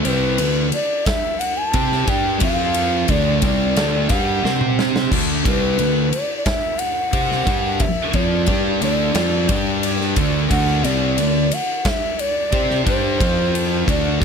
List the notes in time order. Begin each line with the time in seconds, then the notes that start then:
0.04 C2 C3 G3 C4 C5, ride
0.08 B4
0.38 D2 D3 A3, ride
0.72 D5, ride
1.06 E5, kick, snare, ride
1.39 F#5, ride
1.58 A5
1.73 C3 C4 G4 C5, kick, ride
1.92 snare
2.07 G2 G3 D4 G4 G5, kick, ride
2.40 F2 F3 C4 F4 F5, kick, ride
2.74 ride
3.08 D2 D3 A3 D4 D5, kick, ride
3.42 C2 C3 G3 C4 D5, kick, ride
3.76 D2 D3 A3 D4, snare, ride
4.09 G2 G3 D4 G4 F#5, kick, ride
4.44 C3 C4 G4 C5, snare
4.61 mid tom
4.79 snare
4.96 snare
5.12 D2 D3 A3 D4, kick, crash
5.45 C2 C3 G3 C4 B4, kick, ride
5.79 D2 D3 A3, ride
6.11 D5, ride
6.38 D5
6.45 E5, kick, snare, ride
6.79 F#5, ride
7.13 C3 C4 G4 C5, kick, ride
7.31 snare
7.47 G2 G3 D4 G4, kick, ride
7.80 E5, muted fingered electric bass stroke, muted distorted electric guitar stroke, kick, ride
8.13 F2 F3 C4 F4 D5, kick, ride
8.46 G2 G3 D4 G4, kick, ride
8.81 D2 D3 A3 D4 D5, ride
9.15 F2 F3 C4 F4, snare, ride
9.49 G2 G3 D4 G4, kick, ride
9.83 ride
10.00 snare
10.16 D2 D3 A3 D4, kick, ride
10.50 D2 D3 A3 D4 F#5, kick, ride
10.84 C2 C3 G3 C4 D5, ride
11.18 D2 D3 A3, ride
11.52 F#5, ride
11.85 F5, kick, snare, ride
11.89 E5
12.19 D5, ride
12.52 C3 C4 G4 C5, kick, ride
12.70 snare
12.87 G2 G3 D4 G4 C5, kick, ride
13.21 F2 F3 C4 F4, kick, ride
13.55 ride
13.88 D2 D3 A3 D4 D5, kick, ride
14.21 C3 G3 C4